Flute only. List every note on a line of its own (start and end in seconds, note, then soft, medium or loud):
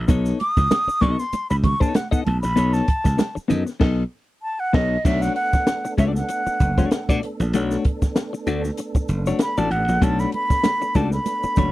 0.41 1.03 D#6 loud
1.01 1.21 C#6 loud
1.20 1.49 C6 loud
1.50 1.56 B5 loud
1.64 1.82 C#6 loud
1.81 1.97 A5 medium
1.96 2.11 F#5 medium
2.11 2.24 F#5 medium
2.24 2.41 A5 medium
2.41 2.75 B5 loud
2.73 3.36 A5 medium
4.42 4.61 A5 medium
4.60 4.76 F#5 loud
4.74 5.06 D#5 loud
5.05 5.23 E5 loud
5.22 5.35 F#5 loud
5.36 5.94 F#5 loud
5.98 6.04 E5 loud
6.15 7.18 F#5 medium
9.42 9.59 B5 loud
9.58 9.73 A5 loud
9.71 10.05 F#5 loud
10.03 10.21 A5 loud
10.20 10.33 B5 loud
10.34 10.97 B5 loud
10.96 11.12 A5 loud
11.13 11.72 B5 loud